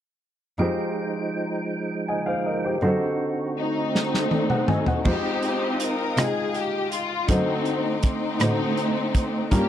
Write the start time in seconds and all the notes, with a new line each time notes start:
0.58 F2 F3 G#3 D#4 F4 G4 G#4 C5 G5
2.08 D#5 G#5
2.26 C5 F5
2.46 A#4 D#5
2.65 G4 C5
2.82 F#2 D3 C4 D#4 F4 F#4 A4 C5
2.89 F#4
3.58 A3 C4 D#4
3.95 snare
4.14 snare
4.31 A4 D5, high tom
4.50 G#4 B4 C5 F#5, mid tom
4.68 F#4 A4 D#5 G#5, mid tom
4.86 F#4 C5 F#5, floor tom
5.05 F2 G#3 C4 D#4 F4 G4 C5 D#5 F5 G5 D#6, kick, crash
5.42 G4, closed hi-hat
5.80 A#4, closed hi-hat
6.17 C3 G#3 D#4 F4 G#4 D#5 G5, cross-stick, closed hi-hat
6.55 G4, closed hi-hat
6.92 F4, closed hi-hat
7.27 F#2 D3 A3 C4 D#4 F#4 A4 C5 D#5 F#5 C6 D6, kick, closed hi-hat
7.65 closed hi-hat
8.03 A3 C4 D#4, kick, cross-stick, closed hi-hat
8.40 A2 D3 D#4 F#4 A4 C5, cross-stick, closed hi-hat
8.77 closed hi-hat
9.15 kick, closed hi-hat
9.50 G2 A#3 C#4 F4 G4 A#4 G5 A#5 C#6, kick, closed hi-hat